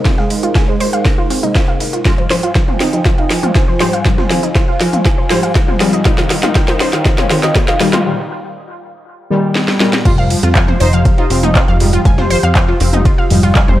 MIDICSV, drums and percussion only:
0, 0, Header, 1, 2, 480
1, 0, Start_track
1, 0, Key_signature, -4, "minor"
1, 0, Tempo, 500000
1, 53, Time_signature, 4, 2, 24, 8
1, 13248, End_track
2, 0, Start_track
2, 0, Title_t, "Drums"
2, 51, Note_on_c, 9, 36, 118
2, 51, Note_on_c, 9, 51, 85
2, 52, Note_on_c, 9, 38, 66
2, 52, Note_on_c, 9, 42, 54
2, 147, Note_off_c, 9, 36, 0
2, 147, Note_off_c, 9, 51, 0
2, 148, Note_off_c, 9, 38, 0
2, 148, Note_off_c, 9, 42, 0
2, 174, Note_on_c, 9, 38, 57
2, 270, Note_off_c, 9, 38, 0
2, 292, Note_on_c, 9, 46, 110
2, 293, Note_on_c, 9, 51, 70
2, 388, Note_off_c, 9, 46, 0
2, 389, Note_off_c, 9, 51, 0
2, 414, Note_on_c, 9, 42, 57
2, 510, Note_off_c, 9, 42, 0
2, 531, Note_on_c, 9, 36, 117
2, 531, Note_on_c, 9, 38, 118
2, 531, Note_on_c, 9, 51, 88
2, 532, Note_off_c, 9, 38, 0
2, 532, Note_on_c, 9, 38, 64
2, 532, Note_on_c, 9, 42, 51
2, 627, Note_off_c, 9, 36, 0
2, 627, Note_off_c, 9, 51, 0
2, 628, Note_off_c, 9, 38, 0
2, 628, Note_off_c, 9, 42, 0
2, 772, Note_on_c, 9, 46, 108
2, 773, Note_on_c, 9, 51, 75
2, 868, Note_off_c, 9, 46, 0
2, 869, Note_off_c, 9, 51, 0
2, 894, Note_on_c, 9, 42, 53
2, 990, Note_off_c, 9, 42, 0
2, 1011, Note_on_c, 9, 36, 122
2, 1012, Note_on_c, 9, 51, 88
2, 1013, Note_on_c, 9, 38, 70
2, 1013, Note_on_c, 9, 42, 51
2, 1107, Note_off_c, 9, 36, 0
2, 1108, Note_off_c, 9, 51, 0
2, 1109, Note_off_c, 9, 38, 0
2, 1109, Note_off_c, 9, 42, 0
2, 1252, Note_on_c, 9, 46, 106
2, 1348, Note_off_c, 9, 46, 0
2, 1375, Note_on_c, 9, 42, 53
2, 1471, Note_off_c, 9, 42, 0
2, 1491, Note_on_c, 9, 36, 122
2, 1493, Note_on_c, 9, 38, 118
2, 1493, Note_on_c, 9, 42, 54
2, 1493, Note_on_c, 9, 51, 86
2, 1587, Note_off_c, 9, 36, 0
2, 1589, Note_off_c, 9, 38, 0
2, 1589, Note_off_c, 9, 42, 0
2, 1589, Note_off_c, 9, 51, 0
2, 1732, Note_on_c, 9, 38, 43
2, 1732, Note_on_c, 9, 51, 66
2, 1733, Note_on_c, 9, 46, 108
2, 1828, Note_off_c, 9, 38, 0
2, 1828, Note_off_c, 9, 51, 0
2, 1829, Note_off_c, 9, 46, 0
2, 1855, Note_on_c, 9, 42, 53
2, 1951, Note_off_c, 9, 42, 0
2, 1971, Note_on_c, 9, 36, 112
2, 1972, Note_on_c, 9, 51, 87
2, 1973, Note_on_c, 9, 38, 77
2, 1973, Note_on_c, 9, 42, 55
2, 2067, Note_off_c, 9, 36, 0
2, 2068, Note_off_c, 9, 51, 0
2, 2069, Note_off_c, 9, 38, 0
2, 2069, Note_off_c, 9, 42, 0
2, 2095, Note_on_c, 9, 51, 44
2, 2191, Note_off_c, 9, 51, 0
2, 2212, Note_on_c, 9, 38, 79
2, 2212, Note_on_c, 9, 46, 104
2, 2212, Note_on_c, 9, 51, 71
2, 2308, Note_off_c, 9, 38, 0
2, 2308, Note_off_c, 9, 46, 0
2, 2308, Note_off_c, 9, 51, 0
2, 2334, Note_on_c, 9, 42, 56
2, 2335, Note_on_c, 9, 51, 41
2, 2430, Note_off_c, 9, 42, 0
2, 2431, Note_off_c, 9, 51, 0
2, 2452, Note_on_c, 9, 36, 113
2, 2452, Note_on_c, 9, 38, 75
2, 2452, Note_on_c, 9, 42, 52
2, 2453, Note_off_c, 9, 38, 0
2, 2453, Note_on_c, 9, 38, 117
2, 2453, Note_on_c, 9, 51, 90
2, 2548, Note_off_c, 9, 36, 0
2, 2548, Note_off_c, 9, 42, 0
2, 2549, Note_off_c, 9, 38, 0
2, 2549, Note_off_c, 9, 51, 0
2, 2575, Note_on_c, 9, 47, 95
2, 2671, Note_off_c, 9, 47, 0
2, 2692, Note_on_c, 9, 38, 79
2, 2692, Note_on_c, 9, 46, 107
2, 2693, Note_on_c, 9, 51, 71
2, 2788, Note_off_c, 9, 38, 0
2, 2788, Note_off_c, 9, 46, 0
2, 2789, Note_off_c, 9, 51, 0
2, 2815, Note_on_c, 9, 42, 52
2, 2911, Note_off_c, 9, 42, 0
2, 2932, Note_on_c, 9, 36, 115
2, 2932, Note_on_c, 9, 51, 88
2, 2933, Note_on_c, 9, 38, 76
2, 2933, Note_on_c, 9, 42, 54
2, 3028, Note_off_c, 9, 36, 0
2, 3028, Note_off_c, 9, 51, 0
2, 3029, Note_off_c, 9, 38, 0
2, 3029, Note_off_c, 9, 42, 0
2, 3055, Note_on_c, 9, 51, 45
2, 3151, Note_off_c, 9, 51, 0
2, 3172, Note_on_c, 9, 38, 81
2, 3172, Note_on_c, 9, 46, 107
2, 3172, Note_on_c, 9, 51, 72
2, 3268, Note_off_c, 9, 38, 0
2, 3268, Note_off_c, 9, 46, 0
2, 3268, Note_off_c, 9, 51, 0
2, 3295, Note_on_c, 9, 42, 52
2, 3295, Note_on_c, 9, 47, 98
2, 3391, Note_off_c, 9, 42, 0
2, 3391, Note_off_c, 9, 47, 0
2, 3412, Note_on_c, 9, 36, 122
2, 3412, Note_on_c, 9, 38, 113
2, 3412, Note_on_c, 9, 51, 90
2, 3413, Note_off_c, 9, 38, 0
2, 3413, Note_on_c, 9, 38, 78
2, 3413, Note_on_c, 9, 42, 52
2, 3508, Note_off_c, 9, 36, 0
2, 3508, Note_off_c, 9, 51, 0
2, 3509, Note_off_c, 9, 38, 0
2, 3509, Note_off_c, 9, 42, 0
2, 3652, Note_on_c, 9, 38, 83
2, 3652, Note_on_c, 9, 46, 105
2, 3653, Note_off_c, 9, 38, 0
2, 3653, Note_on_c, 9, 38, 39
2, 3653, Note_on_c, 9, 51, 67
2, 3748, Note_off_c, 9, 46, 0
2, 3749, Note_off_c, 9, 38, 0
2, 3749, Note_off_c, 9, 51, 0
2, 3775, Note_on_c, 9, 51, 43
2, 3776, Note_on_c, 9, 42, 53
2, 3871, Note_off_c, 9, 51, 0
2, 3872, Note_off_c, 9, 42, 0
2, 3892, Note_on_c, 9, 36, 110
2, 3893, Note_on_c, 9, 38, 85
2, 3893, Note_on_c, 9, 42, 57
2, 3893, Note_on_c, 9, 51, 91
2, 3988, Note_off_c, 9, 36, 0
2, 3989, Note_off_c, 9, 38, 0
2, 3989, Note_off_c, 9, 42, 0
2, 3989, Note_off_c, 9, 51, 0
2, 4015, Note_on_c, 9, 38, 57
2, 4015, Note_on_c, 9, 47, 98
2, 4111, Note_off_c, 9, 38, 0
2, 4111, Note_off_c, 9, 47, 0
2, 4133, Note_on_c, 9, 38, 86
2, 4133, Note_on_c, 9, 46, 101
2, 4133, Note_on_c, 9, 51, 71
2, 4229, Note_off_c, 9, 38, 0
2, 4229, Note_off_c, 9, 46, 0
2, 4229, Note_off_c, 9, 51, 0
2, 4255, Note_on_c, 9, 42, 56
2, 4351, Note_off_c, 9, 42, 0
2, 4372, Note_on_c, 9, 36, 114
2, 4373, Note_on_c, 9, 38, 78
2, 4373, Note_on_c, 9, 42, 52
2, 4373, Note_on_c, 9, 51, 90
2, 4468, Note_off_c, 9, 36, 0
2, 4469, Note_off_c, 9, 38, 0
2, 4469, Note_off_c, 9, 42, 0
2, 4469, Note_off_c, 9, 51, 0
2, 4613, Note_on_c, 9, 38, 90
2, 4613, Note_on_c, 9, 46, 104
2, 4613, Note_on_c, 9, 51, 71
2, 4709, Note_off_c, 9, 38, 0
2, 4709, Note_off_c, 9, 46, 0
2, 4709, Note_off_c, 9, 51, 0
2, 4735, Note_on_c, 9, 42, 55
2, 4735, Note_on_c, 9, 47, 95
2, 4831, Note_off_c, 9, 42, 0
2, 4831, Note_off_c, 9, 47, 0
2, 4852, Note_on_c, 9, 36, 117
2, 4853, Note_on_c, 9, 38, 83
2, 4853, Note_on_c, 9, 42, 55
2, 4853, Note_on_c, 9, 51, 87
2, 4948, Note_off_c, 9, 36, 0
2, 4949, Note_off_c, 9, 38, 0
2, 4949, Note_off_c, 9, 42, 0
2, 4949, Note_off_c, 9, 51, 0
2, 5092, Note_on_c, 9, 38, 92
2, 5092, Note_on_c, 9, 46, 103
2, 5094, Note_off_c, 9, 46, 0
2, 5094, Note_on_c, 9, 46, 82
2, 5188, Note_off_c, 9, 38, 0
2, 5190, Note_off_c, 9, 46, 0
2, 5214, Note_on_c, 9, 42, 55
2, 5310, Note_off_c, 9, 42, 0
2, 5331, Note_on_c, 9, 36, 125
2, 5332, Note_on_c, 9, 38, 91
2, 5332, Note_on_c, 9, 42, 55
2, 5333, Note_off_c, 9, 38, 0
2, 5333, Note_on_c, 9, 38, 111
2, 5333, Note_on_c, 9, 51, 91
2, 5427, Note_off_c, 9, 36, 0
2, 5428, Note_off_c, 9, 42, 0
2, 5429, Note_off_c, 9, 38, 0
2, 5429, Note_off_c, 9, 51, 0
2, 5454, Note_on_c, 9, 47, 99
2, 5550, Note_off_c, 9, 47, 0
2, 5571, Note_on_c, 9, 38, 90
2, 5571, Note_on_c, 9, 46, 104
2, 5572, Note_off_c, 9, 38, 0
2, 5572, Note_on_c, 9, 38, 45
2, 5572, Note_on_c, 9, 51, 67
2, 5667, Note_off_c, 9, 46, 0
2, 5668, Note_off_c, 9, 38, 0
2, 5668, Note_off_c, 9, 51, 0
2, 5694, Note_on_c, 9, 42, 56
2, 5790, Note_off_c, 9, 42, 0
2, 5811, Note_on_c, 9, 36, 116
2, 5811, Note_on_c, 9, 38, 94
2, 5811, Note_on_c, 9, 42, 59
2, 5812, Note_on_c, 9, 51, 88
2, 5907, Note_off_c, 9, 36, 0
2, 5907, Note_off_c, 9, 38, 0
2, 5907, Note_off_c, 9, 42, 0
2, 5908, Note_off_c, 9, 51, 0
2, 5934, Note_on_c, 9, 38, 81
2, 5934, Note_on_c, 9, 51, 44
2, 6030, Note_off_c, 9, 38, 0
2, 6030, Note_off_c, 9, 51, 0
2, 6051, Note_on_c, 9, 38, 94
2, 6051, Note_on_c, 9, 46, 107
2, 6052, Note_on_c, 9, 51, 68
2, 6147, Note_off_c, 9, 38, 0
2, 6147, Note_off_c, 9, 46, 0
2, 6148, Note_off_c, 9, 51, 0
2, 6174, Note_on_c, 9, 38, 86
2, 6174, Note_on_c, 9, 42, 60
2, 6174, Note_on_c, 9, 47, 98
2, 6175, Note_on_c, 9, 51, 44
2, 6270, Note_off_c, 9, 38, 0
2, 6270, Note_off_c, 9, 42, 0
2, 6270, Note_off_c, 9, 47, 0
2, 6271, Note_off_c, 9, 51, 0
2, 6291, Note_on_c, 9, 36, 113
2, 6292, Note_on_c, 9, 38, 122
2, 6292, Note_on_c, 9, 42, 55
2, 6292, Note_on_c, 9, 51, 89
2, 6387, Note_off_c, 9, 36, 0
2, 6388, Note_off_c, 9, 38, 0
2, 6388, Note_off_c, 9, 42, 0
2, 6388, Note_off_c, 9, 51, 0
2, 6414, Note_on_c, 9, 38, 83
2, 6510, Note_off_c, 9, 38, 0
2, 6532, Note_on_c, 9, 38, 114
2, 6532, Note_on_c, 9, 46, 102
2, 6532, Note_on_c, 9, 51, 84
2, 6628, Note_off_c, 9, 38, 0
2, 6628, Note_off_c, 9, 46, 0
2, 6628, Note_off_c, 9, 51, 0
2, 6655, Note_on_c, 9, 38, 86
2, 6655, Note_on_c, 9, 42, 55
2, 6751, Note_off_c, 9, 38, 0
2, 6751, Note_off_c, 9, 42, 0
2, 6772, Note_on_c, 9, 36, 113
2, 6772, Note_on_c, 9, 38, 108
2, 6772, Note_on_c, 9, 51, 76
2, 6773, Note_off_c, 9, 38, 0
2, 6773, Note_on_c, 9, 38, 94
2, 6773, Note_on_c, 9, 42, 58
2, 6868, Note_off_c, 9, 36, 0
2, 6868, Note_off_c, 9, 51, 0
2, 6869, Note_off_c, 9, 38, 0
2, 6869, Note_off_c, 9, 42, 0
2, 6895, Note_on_c, 9, 38, 89
2, 6895, Note_on_c, 9, 47, 92
2, 6895, Note_on_c, 9, 51, 45
2, 6991, Note_off_c, 9, 38, 0
2, 6991, Note_off_c, 9, 47, 0
2, 6991, Note_off_c, 9, 51, 0
2, 7012, Note_on_c, 9, 51, 68
2, 7013, Note_on_c, 9, 38, 100
2, 7013, Note_on_c, 9, 46, 100
2, 7108, Note_off_c, 9, 51, 0
2, 7109, Note_off_c, 9, 38, 0
2, 7109, Note_off_c, 9, 46, 0
2, 7136, Note_on_c, 9, 38, 84
2, 7136, Note_on_c, 9, 42, 57
2, 7232, Note_off_c, 9, 38, 0
2, 7232, Note_off_c, 9, 42, 0
2, 7252, Note_on_c, 9, 36, 122
2, 7253, Note_on_c, 9, 38, 97
2, 7253, Note_on_c, 9, 42, 59
2, 7253, Note_on_c, 9, 51, 87
2, 7348, Note_off_c, 9, 36, 0
2, 7349, Note_off_c, 9, 38, 0
2, 7349, Note_off_c, 9, 42, 0
2, 7349, Note_off_c, 9, 51, 0
2, 7375, Note_on_c, 9, 38, 94
2, 7471, Note_off_c, 9, 38, 0
2, 7493, Note_on_c, 9, 38, 39
2, 7493, Note_on_c, 9, 46, 106
2, 7493, Note_on_c, 9, 51, 68
2, 7589, Note_off_c, 9, 38, 0
2, 7589, Note_off_c, 9, 46, 0
2, 7589, Note_off_c, 9, 51, 0
2, 7615, Note_on_c, 9, 38, 89
2, 7615, Note_on_c, 9, 42, 58
2, 7615, Note_on_c, 9, 47, 99
2, 7615, Note_on_c, 9, 51, 44
2, 7711, Note_off_c, 9, 38, 0
2, 7711, Note_off_c, 9, 42, 0
2, 7711, Note_off_c, 9, 47, 0
2, 7711, Note_off_c, 9, 51, 0
2, 9172, Note_on_c, 9, 38, 63
2, 9268, Note_off_c, 9, 38, 0
2, 9295, Note_on_c, 9, 38, 68
2, 9391, Note_off_c, 9, 38, 0
2, 9412, Note_on_c, 9, 38, 89
2, 9508, Note_off_c, 9, 38, 0
2, 9535, Note_on_c, 9, 38, 89
2, 9631, Note_off_c, 9, 38, 0
2, 9652, Note_on_c, 9, 36, 117
2, 9652, Note_on_c, 9, 42, 61
2, 9652, Note_on_c, 9, 49, 106
2, 9652, Note_on_c, 9, 51, 86
2, 9748, Note_off_c, 9, 36, 0
2, 9748, Note_off_c, 9, 42, 0
2, 9748, Note_off_c, 9, 49, 0
2, 9748, Note_off_c, 9, 51, 0
2, 9775, Note_on_c, 9, 51, 44
2, 9871, Note_off_c, 9, 51, 0
2, 9892, Note_on_c, 9, 46, 109
2, 9892, Note_on_c, 9, 51, 69
2, 9988, Note_off_c, 9, 46, 0
2, 9988, Note_off_c, 9, 51, 0
2, 10014, Note_on_c, 9, 42, 60
2, 10015, Note_on_c, 9, 51, 44
2, 10110, Note_off_c, 9, 42, 0
2, 10111, Note_off_c, 9, 51, 0
2, 10132, Note_on_c, 9, 36, 119
2, 10132, Note_on_c, 9, 38, 119
2, 10132, Note_on_c, 9, 39, 124
2, 10132, Note_on_c, 9, 42, 56
2, 10132, Note_on_c, 9, 51, 87
2, 10228, Note_off_c, 9, 36, 0
2, 10228, Note_off_c, 9, 38, 0
2, 10228, Note_off_c, 9, 39, 0
2, 10228, Note_off_c, 9, 42, 0
2, 10228, Note_off_c, 9, 51, 0
2, 10254, Note_on_c, 9, 47, 89
2, 10350, Note_off_c, 9, 47, 0
2, 10371, Note_on_c, 9, 46, 106
2, 10372, Note_on_c, 9, 51, 72
2, 10467, Note_off_c, 9, 46, 0
2, 10468, Note_off_c, 9, 51, 0
2, 10493, Note_on_c, 9, 42, 61
2, 10589, Note_off_c, 9, 42, 0
2, 10611, Note_on_c, 9, 36, 124
2, 10611, Note_on_c, 9, 51, 89
2, 10612, Note_on_c, 9, 42, 58
2, 10707, Note_off_c, 9, 36, 0
2, 10707, Note_off_c, 9, 51, 0
2, 10708, Note_off_c, 9, 42, 0
2, 10734, Note_on_c, 9, 51, 45
2, 10830, Note_off_c, 9, 51, 0
2, 10851, Note_on_c, 9, 51, 68
2, 10852, Note_on_c, 9, 46, 109
2, 10947, Note_off_c, 9, 51, 0
2, 10948, Note_off_c, 9, 46, 0
2, 10975, Note_on_c, 9, 42, 56
2, 10975, Note_on_c, 9, 47, 84
2, 11071, Note_off_c, 9, 42, 0
2, 11071, Note_off_c, 9, 47, 0
2, 11091, Note_on_c, 9, 36, 126
2, 11091, Note_on_c, 9, 38, 121
2, 11091, Note_on_c, 9, 51, 86
2, 11092, Note_on_c, 9, 39, 127
2, 11092, Note_on_c, 9, 42, 60
2, 11187, Note_off_c, 9, 36, 0
2, 11187, Note_off_c, 9, 38, 0
2, 11187, Note_off_c, 9, 51, 0
2, 11188, Note_off_c, 9, 39, 0
2, 11188, Note_off_c, 9, 42, 0
2, 11331, Note_on_c, 9, 38, 41
2, 11331, Note_on_c, 9, 51, 67
2, 11332, Note_on_c, 9, 46, 109
2, 11427, Note_off_c, 9, 38, 0
2, 11427, Note_off_c, 9, 51, 0
2, 11428, Note_off_c, 9, 46, 0
2, 11452, Note_on_c, 9, 51, 46
2, 11454, Note_on_c, 9, 42, 59
2, 11548, Note_off_c, 9, 51, 0
2, 11550, Note_off_c, 9, 42, 0
2, 11571, Note_on_c, 9, 36, 125
2, 11571, Note_on_c, 9, 51, 90
2, 11573, Note_on_c, 9, 42, 59
2, 11667, Note_off_c, 9, 36, 0
2, 11667, Note_off_c, 9, 51, 0
2, 11669, Note_off_c, 9, 42, 0
2, 11693, Note_on_c, 9, 38, 60
2, 11695, Note_on_c, 9, 47, 90
2, 11789, Note_off_c, 9, 38, 0
2, 11791, Note_off_c, 9, 47, 0
2, 11812, Note_on_c, 9, 46, 114
2, 11812, Note_on_c, 9, 51, 69
2, 11908, Note_off_c, 9, 46, 0
2, 11908, Note_off_c, 9, 51, 0
2, 11934, Note_on_c, 9, 42, 58
2, 12030, Note_off_c, 9, 42, 0
2, 12052, Note_on_c, 9, 36, 117
2, 12052, Note_on_c, 9, 38, 120
2, 12052, Note_on_c, 9, 39, 123
2, 12052, Note_on_c, 9, 42, 54
2, 12052, Note_on_c, 9, 51, 92
2, 12148, Note_off_c, 9, 36, 0
2, 12148, Note_off_c, 9, 38, 0
2, 12148, Note_off_c, 9, 39, 0
2, 12148, Note_off_c, 9, 42, 0
2, 12148, Note_off_c, 9, 51, 0
2, 12291, Note_on_c, 9, 46, 112
2, 12293, Note_on_c, 9, 51, 75
2, 12387, Note_off_c, 9, 46, 0
2, 12389, Note_off_c, 9, 51, 0
2, 12414, Note_on_c, 9, 42, 58
2, 12414, Note_on_c, 9, 47, 87
2, 12510, Note_off_c, 9, 42, 0
2, 12510, Note_off_c, 9, 47, 0
2, 12531, Note_on_c, 9, 51, 92
2, 12532, Note_on_c, 9, 36, 123
2, 12532, Note_on_c, 9, 42, 59
2, 12627, Note_off_c, 9, 51, 0
2, 12628, Note_off_c, 9, 36, 0
2, 12628, Note_off_c, 9, 42, 0
2, 12772, Note_on_c, 9, 46, 117
2, 12868, Note_off_c, 9, 46, 0
2, 12894, Note_on_c, 9, 42, 57
2, 12990, Note_off_c, 9, 42, 0
2, 13011, Note_on_c, 9, 39, 125
2, 13011, Note_on_c, 9, 42, 56
2, 13012, Note_on_c, 9, 36, 127
2, 13012, Note_on_c, 9, 38, 118
2, 13012, Note_on_c, 9, 51, 93
2, 13107, Note_off_c, 9, 39, 0
2, 13107, Note_off_c, 9, 42, 0
2, 13108, Note_off_c, 9, 36, 0
2, 13108, Note_off_c, 9, 38, 0
2, 13108, Note_off_c, 9, 51, 0
2, 13134, Note_on_c, 9, 47, 93
2, 13230, Note_off_c, 9, 47, 0
2, 13248, End_track
0, 0, End_of_file